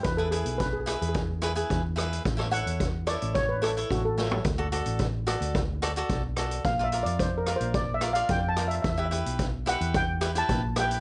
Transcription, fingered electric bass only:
\new Staff \with { instrumentName = "Fingered electric bass" } { \clef bass \time 4/4 \key e \dorian \tempo 4 = 109 e,8. b,,4 e,4~ e,16 e,4 | a,,8. e,4 a,,4~ a,,16 a,,4 | d,8. a,,4 d,4~ d,16 b,,4 | bes,,8. f,4 bes,,4~ bes,,16 f,4 |
e,8. b,,4 e,4~ e,16 bes,,4 | }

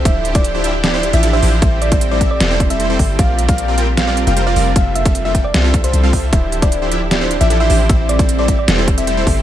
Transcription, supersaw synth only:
\new Staff \with { instrumentName = "Supersaw synth" } { \time 4/4 \key d \minor \tempo 4 = 153 <f d' e' g' c''>8. <f d' e' g' c''>8 <f d' e' g' c''>16 <f d' e' g' e''>16 r16 <f d' e' g' d''>16 <f d' e' g' c''>8 <f d' e' g' e''>16 <f d' e' g' a'>16 <f d' e' g' c''>16 <f d' e' g' c''>8 | <g c' e' a' c''>8. <g c' e' a' c''>8 <g c' e' a' c''>16 <g c' e' a' e''>16 r16 <g c' e' a' d''>16 <g c' e' a' c''>8 <g c' e' a' e''>16 <g c' e' a' c''>16 <g c' e' a' c''>16 <g c' e' a' c''>8 | <g c' f' bes' d''>8. <g c' f' bes' d''>8 <g c' f' bes' d''>16 <g c' f' bes' g''>16 r16 <g c' f' bes' f''>16 <g c' f' bes' d''>8 <g c' f' bes' g''>16 <g c' f' bes' c''>16 <g c' f' bes' d''>16 <g c' f' bes' d''>8 | <g c' f' a' e''>8. <g c' f' a' e''>8 <g c' f' a' e''>16 <g c' f' a' g''>16 r16 <g c' f' a' f''>16 <g c' f' a' e''>8 <g c' f' a' e''>8 <g c' f' a' f''>16 <g c' f' a' e''>8 |
<f d' e' g' c''>8. <f d' e' g' c''>8 <f d' e' g' c''>16 <f d' e' g' e''>16 r16 <f d' e' g' d''>16 <f d' e' g' c''>8 <f d' e' g' e''>16 <f d' e' g' a'>16 <f d' e' g' c''>16 <f d' e' g' c''>8 | <g c' e' a' c''>8. <g c' e' a' c''>8 <g c' e' a' c''>16 <c' e' a' e''>16 r16 <g c' e' a' d''>16 <g c' e' a' c''>8 <g c' e' a' e''>16 <g c' e' a' c''>16 <g c' e' a' c''>16 <c' a'>8 | }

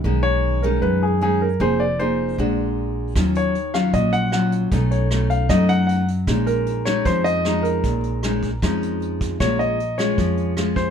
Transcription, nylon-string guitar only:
\new Staff \with { instrumentName = "Nylon-string guitar" } { \time 4/4 \key bes \minor \tempo 4 = 154 << { <dis gis cis'>4. <dis gis cis'>4. <dis gis cis'>8 r8 | <bes ees' aes'>8 r8 <bes ees' aes'>4 <aes d' fis'>2 | <ges des' f'>4 r8 <ges des' f'>4. <ges des' f'>4 | <a cis' dis'>4 <a cis' dis'>4 <a cis' dis'>4. r8 |
<aes des' ees'>4. <aes des' ees'>4. <aes des' ees'>4~ | <aes des' ees'>4 <aes des' ees'>8 r8 <aes des' ees'>2 | <aes des' f'>4 r8 <aes des' f'>4. <aes des' f'>4 | } \\ { b,2 fis,2 | f2 bes,2 | ees2 bes,2 | b,2 fis2 |
bes,2 f2 | bes,2 f2 | bes,2 f2 | } >> }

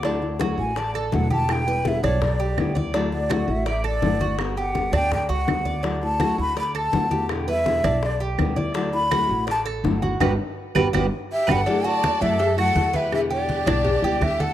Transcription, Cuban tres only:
\new Staff \with { instrumentName = "Cuban tres" } { \time 4/4 \key d \major \tempo 4 = 165 d'4 fis'4 d''8 a'4 g'8~ | g'8 b'4 d'4 g'4 d''8 | d'4 fis'4 d''8 a'4 fis'8~ | fis'8 g'4 d'4 fis'4 d''8 |
d'4 fis'4 d''8 a'4 g'8~ | g'8 b'4 d'4 g'4 d''8 | d'4 fis'4 d''8 a'4 fis'8 | <fis' g' b'>8 r4 <fis' g' b'>8 <fis' g' b'>8 r4 <fis' g' b'>8 |
d'8 fis'4 d''8 a'8 fis'4 b'8~ | b'8 g'4 d'4 g'4 a'8 | }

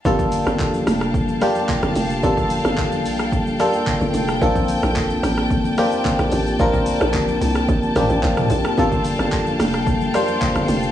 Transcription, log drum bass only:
\new Staff \with { instrumentName = "Log drum bass" } { \clef bass \time 4/4 \key g \minor \tempo 4 = 110 g,,8. g,,8. f,,4 r8. g,,16 f,,8 | g,,8. g,,8. bes,,4 r8. g,,16 f,,8 | bes,,8. bes,,8. a,,4 r8. bes,,16 a,,8 | bes,,8. bes,,8. c,8 bes,,16 r16 a,,16 a,,16 bes,,16 r16 bes,,16 r16 |
g,,8. g,,8. f,,4 r8. g,,16 f,,8 | }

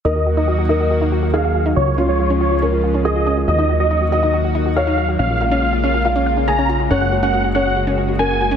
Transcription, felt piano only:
\new Staff \with { instrumentName = "Felt piano" } { \time 4/4 \key ees \minor \tempo 4 = 140 bes'4. bes'4. aes'4~ | aes'8 f'4. bes'4 aes'4 | ees''4. ees''4. des''4~ | des''8 f''4. f''4 aes''4 |
des''4. des''4. bes'4 | }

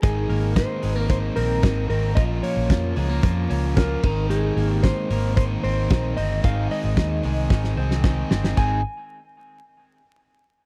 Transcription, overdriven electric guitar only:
\new Staff \with { instrumentName = "Overdriven electric guitar" } { \time 4/4 \key aes \major \tempo 4 = 112 <aes, ees aes c' ees' bes'>4. <aes c' ees' bes'>4 <aes c' ees' bes'>8 <aes c' ees' bes'>8 <aes c' ees' bes'>8 | <bes, f bes des' f' bes'>4. <bes des' f' bes'>4 <bes des' f' bes'>8 <bes des' f' bes'>8 <aes c' ees' bes'>8 | <aes, ees aes c' ees' bes'>4. <aes c' ees' bes'>4 <aes c' ees' bes'>8 <aes c' ees' bes'>8 <aes c' ees' bes'>8 | <aes, ees aes c' ees' aes'>4. <aes c' ees' aes'>4 <aes c' ees' aes'>8 <aes c' ees' aes'>8 <aes c' ees' aes'>8 |
<aes, ees aes c' ees' aes'>8 r2. r8 | }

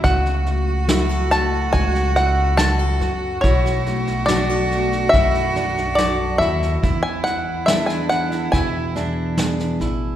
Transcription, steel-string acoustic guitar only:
\new Staff \with { instrumentName = "Steel-string acoustic guitar" } { \time 4/4 \key fis \minor \tempo 4 = 71 << { <a fis'>8 a8 fis'16 a'16 a4 cis'8 fis'16 a'8. | r8 a8 fis'16 a'16 a4 d'8 a'4 | r8 e'8 gis'8 e'4 gis'8 gis'4 | } \\ { cis4 fis4 cis4 fis4 | b,4 fis4 fis,4 fis4 | e4 b4 b,4 b4 | } >> }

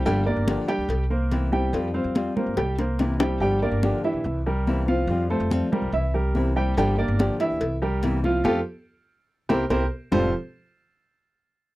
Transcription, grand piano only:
\new Staff \with { instrumentName = "Grand piano" } { \time 4/4 \key f \major \tempo 4 = 143 <g g' g''>8 <bes bes' d''>4 <g g' g''>4 <bes bes' c''>4 <g g' g''>8~ | <g g' g''>8 <c' c'' f''>4 <bes bes' c''>8 <g g' g''>8 <bes bes' c''>4 <g g' g''>8 | <g g' g''>8 <bes bes' d''>4 <e e' e''>4 <g g' bes'>4 <f f' f''>8~ | <f f' f''>8 <a a' c''>4 <g g' bes'>8 <e e' e''>8 <g g' bes'>4 <g g' g''>8 |
<g g' g''>8 <bes bes' d''>4 <e e' e''>4 <g g' bes'>4 <f f' f''>8 | <f' g' a'>8 r2 <g' bes' c''>8 <g' bes' c''>8 r8 | <f c' f' g' a' c''>8 r2. r8 | }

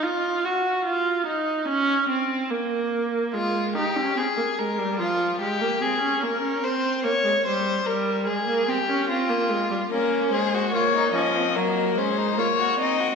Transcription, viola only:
\new Staff \with { instrumentName = "Viola" } { \time 4/4 \key f \phrygian \tempo 4 = 73 f'8 ges'8 f'8 ees'8 des'8 c'8 bes4 | aes8 ees'16 des'16 c'16 bes16 aes16 g16 f8 aes16 bes16 c'16 des'16 bes16 des'16 | c'8 bes16 aes16 g8 g8 aes16 bes16 c'16 des'16 c'16 bes16 aes16 g16 | bes8 aes8 bes8 f8 ges8 aes8 bes8 c'8 | }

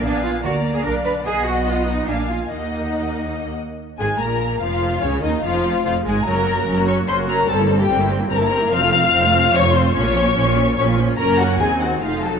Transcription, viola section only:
\new Staff \with { instrumentName = "Viola section" } { \time 3/4 \key ees \minor \tempo 4 = 145 << { r2. | r2. | r2. | \key bes \minor r8 aes8 bes4 f4 |
des8 ees8 f4 f8 aes8 | des'16 ges'16 des'16 ges'16 des'16 ges'16 des'16 ges'16 des'16 ges'16 des'16 ges'16 | c'16 e'16 c'16 e'16 c'16 e'16 c'16 e'16 c'16 e'16 c'16 e'16 | c'16 f'16 c'16 f'16 c'16 f'16 c'16 f'16 c'16 f'16 c'16 f'16 |
des'16 f'16 des'16 f'16 des'16 f'16 des'16 f'16 des'16 f'16 des'16 f'16 | des'4 ees'4 ees'4 | } \\ { ces'4 bes4 d'4 | b2 bes4 | bes2~ bes8 r8 | r2. |
r2. | ges16 bes16 ges16 bes16 ges16 bes16 ges16 bes16 ges16 bes16 ges16 bes16 | g16 bes16 g16 bes16 g16 bes16 g16 bes16 g16 bes16 g16 bes16 | f16 a16 f16 a16 f16 a16 f16 a16 f16 a16 f16 a16 |
f16 bes16 f16 bes16 f16 bes16 f16 bes16 f16 bes16 f16 bes16 | bes4 c'4 a8 ges8 | } >> }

